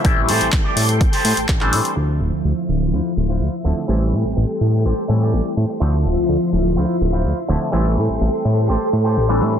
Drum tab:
HH |x-oxx-oxxooxx-ox|----------------|----------------|----------------|
CP |----x-------xx--|----------------|----------------|----------------|
BD |o---o---o---o---|----------------|----------------|----------------|

HH |----------------|
CP |----------------|
BD |----------------|